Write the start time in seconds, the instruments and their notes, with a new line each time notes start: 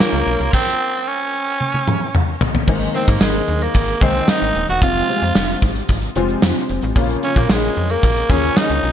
Already playing: grand piano C#3 F3 A#3 C#4 F4, tenor saxophone A#3, pipe organ F4 A#4 C#5 A#5, marimba A#4
0.00 snare, tambourine
0.13 fm bass C#2, closed hi-hat
0.27 fm bass B1, closed hi-hat
0.40 fm bass C2, closed hi-hat
0.53 tenor saxophone C4, kick, crash
1.08 tenor saxophone C#4
1.61 high tom
1.74 high tom
1.88 mid tom
2.15 mid tom
2.41 floor tom
2.55 floor tom
2.67 fm bass G#1, grand piano D#3 G#3 A#3 C4 D#4, kick, crash
2.81 closed hi-hat
2.94 grand piano D#3 G#3 A#3 C4 D#4, tenor saxophone C4, marimba C5, closed hi-hat
3.08 fm bass G#2, tenor saxophone A#3, marimba A#4, kick, closed hi-hat
3.20 fm bass G#1, tenor saxophone G#3, marimba G#4, snare, tambourine
3.34 closed hi-hat
3.47 fm bass D#2, closed hi-hat
3.61 tenor saxophone A#3, marimba A#4, closed hi-hat
3.74 fm bass G#1, kick, closed hi-hat
3.88 closed hi-hat
4.01 fm bass C2, grand piano D#3 G#3 A#3 C4 D#4, tenor saxophone C4, marimba C5, kick, closed hi-hat
4.14 closed hi-hat
4.28 tenor saxophone D#4, marimba D#5, snare, tambourine
4.41 fm bass G#1, closed hi-hat
4.55 fm bass D#1, closed hi-hat
4.68 fm bass E1, tenor saxophone F#4, marimba F#5, closed hi-hat
4.81 fm bass F1, grand piano C3 F3 G#3 C4 F4, tenor saxophone F4, marimba F5, kick, closed hi-hat
4.95 closed hi-hat
5.09 grand piano C3 F3 G3 C4 F4, closed hi-hat
5.16 grand piano G#3
5.22 fm bass F2, closed hi-hat
5.35 fm bass F1, snare, tambourine
5.49 closed hi-hat
5.62 fm bass G#1, kick, closed hi-hat
5.75 closed hi-hat
5.89 fm bass G#1, kick, closed hi-hat
6.02 closed hi-hat
6.16 fm bass F1, grand piano C3 F3 G#3 C4 F4, closed hi-hat
6.28 closed hi-hat
6.42 fm bass F2, snare, tambourine
6.55 closed hi-hat
6.69 fm bass F1, closed hi-hat
6.82 fm bass A1, closed hi-hat
6.95 fm bass A#1, grand piano C#3 F3 A#3 C#4 F4, kick, closed hi-hat
7.09 closed hi-hat
7.23 grand piano C#3 F3 A#3 C#4 F4, tenor saxophone C#4, marimba C#5, closed hi-hat
7.36 fm bass A#2, tenor saxophone A#3, marimba A#4, kick, closed hi-hat
7.49 fm bass A#1, tenor saxophone G#3, marimba G#4, snare, tambourine
7.63 closed hi-hat
7.76 fm bass F2, closed hi-hat
7.89 tenor saxophone A#3, marimba A#4, closed hi-hat
8.03 fm bass A#1, kick, closed hi-hat
8.16 closed hi-hat
8.29 fm bass D#2, grand piano C#3 F3 A#3 C#4 G#4, tenor saxophone C#4, marimba C#5, kick, closed hi-hat
8.43 closed hi-hat
8.56 tenor saxophone D#4, marimba D#5, snare, tambourine
8.70 fm bass C#2, closed hi-hat
8.84 fm bass B1, closed hi-hat